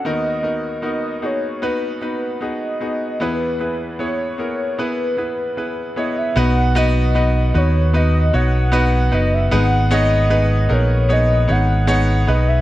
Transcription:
<<
  \new Staff \with { instrumentName = "Soft synth lead" } { \time 4/4 \key b \major \tempo 4 = 76 dis''4 dis''8 cis''8 b'8 b'8 dis''4 | b'4 cis''4 b'4. dis''16 e''16 | fis''8 dis''4 cis''8 dis''8 fis''4 dis''16 e''16 | fis''8 dis''4 cis''8 dis''8 fis''4 dis''16 e''16 | }
  \new Staff \with { instrumentName = "Grand piano" } { \time 4/4 \key b \major <b dis' fis' ais'>8 <b dis' fis' ais'>8 <b dis' fis' ais'>8 <b dis' fis' gis'>8 <b dis' fis' b'>8 <b dis' fis' b'>8 <b dis' fis' gis'>8 <b dis' fis' gis'>8 | <b e' gis' b'>8 <b e' gis' b'>8 <b e' gis' cis''>8 <b e' gis' ais'>8 <b e' gis' b'>8 <b e' gis' b'>8 <b e' gis' b'>8 <b e' gis' cis''>8 | <b dis' fis' b'>8 <b dis' fis' b'>8 <b dis' fis' b'>8 <b dis' fis' b'>8 <b dis' fis' b'>8 <b dis' fis' cis''>8 <b dis' fis' b'>8 <b dis' fis' b'>8 | <b dis' gis' b'>8 <b dis' gis' cis''>8 <b dis' gis' b'>8 <b dis' gis' ais'>8 <b dis' gis' cis''>8 <b dis' gis' cis''>8 <b dis' gis' cis''>8 <b dis' gis' b'>8 | }
  \new Staff \with { instrumentName = "Grand piano" } { \clef bass \time 4/4 \key b \major <dis, dis>1 | <e, e>1 | b,4. r2 r8 | gis,4. r2 r8 | }
  \new Staff \with { instrumentName = "Fingered electric bass" } { \clef bass \time 4/4 \key b \major r1 | r1 | b,,4. dis,4 b,,4 fis,,8 | gis,,4. ais,,4 gis,,4 b,,8 | }
>>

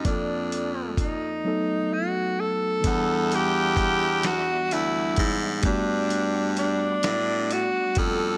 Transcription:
<<
  \new Staff \with { instrumentName = "Tonewheel organ" } { \time 6/8 \key e \minor \tempo 4. = 43 << { r2. | <g b'' d'''>2.~ | <g b'' d'''>2. | } \\ { r2. | e''2. | fis''2. | } >> }
  \new Staff \with { instrumentName = "Tenor saxophone" } { \time 6/8 \key e \minor d'4 ees'4 fis'8 a'8~ | a'8 g'4 fis'8 e'8 r8 | d'4 d'4 fis'8 a'8 | }
  \new Staff \with { instrumentName = "Tine electric piano" } { \time 6/8 \key e \minor <f bes c' a' d''>4. <fis a b dis' a'>4. | <e g b d' fis''>2. | <g a b d' fis'>2. | }
  \new Staff \with { instrumentName = "Baritone saxophone" } { \clef bass \time 6/8 \key e \minor f,4. r4. | e,2 d,8 aes,8 | g,4. a,8 r8 f,8 | }
  \new DrumStaff \with { instrumentName = "Drums" } \drummode { \time 6/8 <hh bd>8 hh8 <hh bd>8 r4. | <hh bd>8 hh8 <hh bd>8 <hh sn>8 hh8 <hh bd>8 | <hh bd>8 hh8 hh8 <hh sn>8 hh8 <hh bd>8 | }
>>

